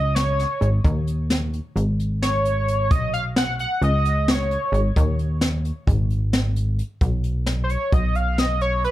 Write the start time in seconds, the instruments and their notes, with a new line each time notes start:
Already playing: analog synth bass C#2, analog synth lead D#5
0.15 analog synth lead C#5, snare, closed hi-hat
0.39 snare, closed hi-hat
0.61 analog synth bass G#1, closed hi-hat
0.84 analog synth bass D#2, kick, closed hi-hat
1.07 closed hi-hat
1.30 snare, closed hi-hat
1.53 closed hi-hat
1.76 analog synth bass G#1, closed hi-hat
2.00 closed hi-hat
2.22 analog synth lead C#5, snare, closed hi-hat
2.45 closed hi-hat
2.68 closed hi-hat
2.91 analog synth bass B1, analog synth lead D#5, kick, closed hi-hat
3.13 analog synth lead F5, closed hi-hat
3.36 analog synth lead F#5, snare, closed hi-hat
3.59 analog synth lead F#5, closed hi-hat
3.82 analog synth bass C#2, analog synth lead D#5, closed hi-hat
4.05 closed hi-hat
4.28 analog synth lead C#5, snare, closed hi-hat
4.51 closed hi-hat
4.72 analog synth bass G#1, closed hi-hat
4.96 analog synth bass D#2, kick, closed hi-hat
5.19 closed hi-hat
5.41 snare, closed hi-hat
5.65 closed hi-hat
5.87 analog synth bass G#1, kick, closed hi-hat
6.10 closed hi-hat
6.33 snare, closed hi-hat
6.56 closed hi-hat
6.79 closed hi-hat
7.01 analog synth bass B1, kick, closed hi-hat
7.24 closed hi-hat
7.46 snare, closed hi-hat
7.64 analog synth lead C5
7.69 analog synth lead C#5, closed hi-hat
7.92 analog synth bass B1, analog synth lead D#5, kick, closed hi-hat
8.15 analog synth lead F5, closed hi-hat
8.38 analog synth lead D#5, snare, closed hi-hat
8.61 analog synth lead C#5, closed hi-hat
8.84 analog synth lead B4, closed hi-hat